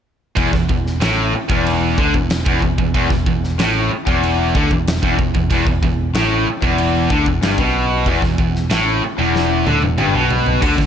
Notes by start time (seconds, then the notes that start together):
0.37 E1 E2, kick, crash
0.53 E1 E2, kick, snare
0.69 E1 E2, kick
0.87 snare
1.01 A1 A2, snare, crash
1.33 muted distorted electric guitar stroke, muted picked electric bass stroke, muted overdriven electric guitar stroke
1.50 E1 E2, kick
1.66 crash
1.97 D2 D3, kick
2.14 E1 E2, kick
2.30 snare, crash
2.46 E1 E2, kick
2.62 E1 E2, kick
2.78 E1 E2, kick
2.94 E1 E2, kick, crash
3.10 E1 E2, kick, snare
3.26 E1 E2, kick
3.44 snare
3.59 A1 A2, snare, crash
3.91 muted picked electric bass stroke, muted overdriven electric guitar stroke, muted distorted electric guitar stroke
4.06 E1 E2, kick
4.23 crash
4.55 D2 D3, kick
4.71 E1 E2, kick
4.87 snare, crash
5.03 E1 E2, kick
5.19 E1 E2, kick
5.34 E1 E2, kick
5.51 E1 E2, kick, crash
5.67 E1 E2, kick
5.82 E1 E2, kick
6.14 A1 A2, snare, crash
6.46 muted picked electric bass stroke, muted distorted electric guitar stroke, muted overdriven electric guitar stroke
6.62 E1 E2, kick
6.78 crash
7.10 D2 D3, kick
7.26 E1 E2, kick
7.42 G1 G2, snare, crash
7.58 B1 B2, kick
8.06 E1 E2, kick, crash
8.22 E1 E2, kick, snare
8.38 E1 E2, kick
8.56 snare
8.70 A1 A2, snare, crash
9.02 muted overdriven electric guitar stroke, muted picked electric bass stroke, muted distorted electric guitar stroke
9.18 E1 E2
9.36 snare
9.66 D2 D3, high tom
9.82 E1 E2, high tom
9.98 G1 G2, mid tom
10.14 B1 B2
10.31 floor tom
10.46 floor tom
10.62 D2 D3, kick, splash, crash
10.78 D2 D3, kick, snare